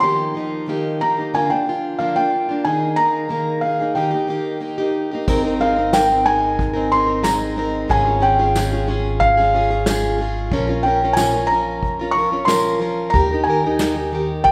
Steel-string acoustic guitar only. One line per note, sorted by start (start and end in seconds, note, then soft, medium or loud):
0.01 0.34 D#3 medium
0.01 0.33 F3 medium
0.01 0.34 A#3 medium
0.01 0.35 D#4 medium
0.01 0.35 G4 medium
0.34 0.67 F3 soft
0.34 0.68 A#3 soft
0.34 0.68 D#4 medium
0.34 0.68 G4 medium
0.68 1.00 D#3 medium
0.68 0.99 F3 medium
0.68 1.00 A#3 medium
0.68 1.01 D#4 medium
0.68 1.01 G4 medium
1.00 1.16 F3 soft
1.00 1.17 A#3 medium
1.00 1.17 D#4 medium
1.00 1.16 G4 medium
1.17 1.34 A#3 soft
1.17 1.34 D#4 soft
1.17 1.33 G4 soft
1.34 1.50 D3 medium
1.34 1.50 F3 medium
1.34 1.50 A#3 medium
1.34 1.50 D4 medium
1.34 1.48 F4 medium
1.50 1.66 A#3 soft
1.50 1.67 D4 soft
1.50 1.66 F4 soft
1.66 1.99 F3 soft
1.66 1.99 A#3 soft
1.66 1.99 D4 medium
1.66 2.00 F4 medium
1.99 2.15 D3 medium
1.99 2.16 F3 medium
1.99 2.16 A#3 medium
1.99 2.16 D4 medium
1.99 2.15 F4 medium
2.16 2.50 A#3 soft
2.16 2.49 D4 soft
2.16 2.48 F4 soft
2.49 2.65 A#3 soft
2.49 2.66 D4 soft
2.49 2.65 F4 soft
2.65 2.96 D#3 medium
2.65 2.97 A#3 medium
2.65 2.99 D#4 medium
2.65 2.99 G#4 medium
2.97 3.28 D#3 soft
2.97 3.29 A#3 soft
2.97 3.29 D#4 soft
2.97 3.30 G#4 soft
3.29 3.61 D#3 medium
3.29 3.62 A#3 medium
3.29 3.63 D#4 medium
3.29 3.64 G#4 medium
3.62 3.79 D#3 soft
3.62 3.80 A#3 soft
3.62 3.80 D#4 soft
3.62 3.78 G#4 soft
3.79 3.94 A#3 soft
3.79 3.95 D#4 soft
3.79 3.96 G#4 soft
3.95 4.12 D#3 medium
3.95 4.12 A#3 medium
3.95 4.12 D#4 medium
3.95 4.09 G4 medium
4.11 4.27 A#3 soft
4.11 4.28 D#4 soft
4.11 4.28 G4 soft
4.27 4.59 D#3 soft
4.27 4.60 A#3 medium
4.27 4.60 D#4 medium
4.27 4.61 G4 medium
4.60 4.77 D#3 medium
4.60 4.78 A#3 medium
4.60 4.78 D#4 medium
4.60 4.77 G4 medium
4.78 5.13 A#3 soft
4.78 5.12 D#4 soft
4.78 5.10 G4 medium
5.11 5.28 A#3 soft
5.11 5.28 D#4 soft
5.11 5.28 G4 medium
5.28 5.44 G#3 medium
5.28 5.44 C4 medium
5.28 5.44 D#4 medium
5.28 5.42 A#4 medium
5.44 5.60 C4 soft
5.44 5.61 D#4 soft
5.44 5.60 A#4 soft
5.60 5.76 G#3 medium
5.60 5.77 C4 medium
5.60 5.77 D#4 medium
5.60 5.75 A#4 medium
5.76 5.93 C4 soft
5.76 5.93 D#4 soft
5.76 5.93 A#4 soft
5.93 6.09 G#3 medium
5.93 6.10 C4 medium
5.93 6.09 D#4 medium
5.93 6.08 A#4 medium
6.09 6.26 C4 soft
6.09 6.26 D#4 soft
6.09 6.26 A#4 soft
6.26 6.75 G#3 medium
6.26 6.75 C4 medium
6.26 6.74 D#4 medium
6.26 6.72 A#4 medium
6.73 6.91 C4 soft
6.73 6.91 D#4 soft
6.73 6.91 A#4 medium
6.91 7.08 G#3 medium
6.91 7.08 C4 medium
6.91 7.07 D#4 medium
6.91 7.05 A#4 medium
7.06 7.23 C4 soft
7.06 7.24 D#4 soft
7.06 7.23 A#4 soft
7.23 7.55 G#3 medium
7.23 7.56 C4 medium
7.23 7.57 D#4 medium
7.23 7.58 A#4 medium
7.56 7.88 G#3 medium
7.56 7.90 C4 medium
7.56 7.89 D#4 medium
7.56 7.90 A#4 medium
7.88 8.05 G#2 medium
7.88 8.06 C#3 medium
7.88 8.06 G#3 medium
7.88 8.06 C#4 medium
7.88 8.05 F4 medium
7.88 8.04 G#4 medium
8.05 8.19 G#3 soft
8.05 8.20 C#4 soft
8.05 8.22 F4 soft
8.05 8.22 G#4 soft
8.20 8.38 G#3 medium
8.20 8.38 C#4 medium
8.20 8.38 F4 medium
8.20 8.38 G#4 medium
8.39 8.55 G#3 soft
8.39 8.56 C#4 soft
8.39 8.55 F4 soft
8.39 8.55 G#4 medium
8.55 8.72 G#2 medium
8.55 8.72 C#3 medium
8.55 8.72 G#3 medium
8.55 8.72 C#4 medium
8.55 8.72 F4 medium
8.55 8.71 G#4 medium
8.72 8.86 G#3 soft
8.72 8.87 C#4 soft
8.72 8.88 F4 soft
8.72 8.88 G#4 soft
8.87 9.37 G#3 medium
8.87 9.37 C#4 medium
8.87 9.37 F4 medium
8.87 9.36 G#4 medium
9.37 9.52 G#3 soft
9.37 9.53 C#4 soft
9.37 9.54 F4 medium
9.37 9.54 G#4 medium
9.53 9.70 G#3 medium
9.53 9.70 C#4 medium
9.53 9.71 F4 medium
9.53 9.69 G#4 medium
9.71 9.88 G#3 soft
9.71 9.88 C#4 soft
9.71 9.87 F4 soft
9.71 9.87 G#4 medium
9.87 10.20 G#2 medium
9.87 10.20 C#3 medium
9.87 10.17 G#3 medium
9.87 10.19 C#4 medium
9.87 10.20 F4 medium
9.87 10.21 G#4 medium
10.18 10.52 G#3 medium
10.18 10.52 C#4 medium
10.18 10.52 F4 medium
10.18 10.53 G#4 medium
10.52 10.68 A#2 medium
10.52 10.69 F3 medium
10.52 10.69 C#4 medium
10.52 10.68 F4 medium
10.52 10.66 A#4 medium
10.67 10.85 C#4 soft
10.67 10.85 F4 soft
10.67 10.84 A#4 medium
10.84 11.01 F3 medium
10.84 11.02 C#4 medium
10.84 11.02 F4 medium
10.84 11.01 A#4 medium
11.02 11.17 C#4 soft
11.02 11.18 F4 soft
11.02 11.18 A#4 medium
11.17 11.34 A#2 medium
11.17 11.34 F3 medium
11.17 11.34 C#4 medium
11.17 11.34 F4 medium
11.17 11.32 A#4 medium
11.34 11.50 C#4 soft
11.34 11.51 F4 soft
11.34 11.50 A#4 soft
11.50 11.99 F3 medium
11.50 12.00 C#4 medium
11.50 12.00 F4 medium
11.50 11.98 A#4 medium
11.99 12.16 C#4 soft
11.99 12.17 F4 soft
11.99 12.16 A#4 medium
12.15 12.32 F3 medium
12.15 12.32 C#4 medium
12.15 12.31 F4 medium
12.15 12.30 A#4 medium
12.31 12.46 C#4 soft
12.31 12.47 F4 soft
12.31 12.48 A#4 soft
12.46 12.80 A#2 medium
12.46 12.78 F3 medium
12.46 12.79 C#4 medium
12.46 12.80 F4 medium
12.46 12.81 A#4 medium
12.80 13.13 F3 medium
12.80 13.13 C#4 medium
12.80 13.14 F4 medium
12.80 13.14 A#4 medium
13.14 13.30 D#3 medium
13.14 13.30 D#4 medium
13.14 13.31 G4 medium
13.14 13.29 A#4 medium
13.31 13.47 D#4 soft
13.31 13.48 G4 soft
13.31 13.47 A#4 soft
13.47 13.63 D#3 medium
13.47 13.64 D#4 medium
13.47 13.64 G4 medium
13.47 13.63 A#4 medium
13.64 13.80 D#4 soft
13.64 13.81 G4 medium
13.64 13.80 A#4 medium
13.80 13.96 D#3 medium
13.80 13.96 D#4 medium
13.80 13.95 G4 medium
13.80 13.94 A#4 medium
13.95 14.12 D#4 soft
13.95 14.13 G4 soft
13.95 14.12 A#4 soft
14.12 14.52 D#3 medium
14.12 14.52 D#4 medium
14.12 14.52 G4 medium
14.12 14.52 A#4 medium